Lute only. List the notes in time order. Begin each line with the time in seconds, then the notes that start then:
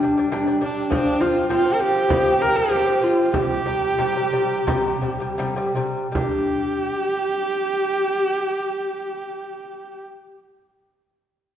0.02 G3 D4
0.17 G3 D4
0.32 G3 D4
0.47 G3 D4
0.61 G3 D4
0.90 F3 C4
1.20 F3 C4
1.49 F3 C4
1.64 F3 C4
1.79 F3 C4
2.09 F3 C4
2.39 F3 C4
2.54 F3 C4
2.70 F3 C4
2.85 F3 C4
3.01 F3 C4
3.33 C3 G3
3.66 C3 G3
3.98 C3 G3
4.15 C3 G3
4.32 C3 G3
4.67 C3 G3
5.02 C3 G3
5.20 C3 G3
5.38 C3 G3
5.56 C3 G3
5.75 C3 G3
6.12 G3
6.17 D4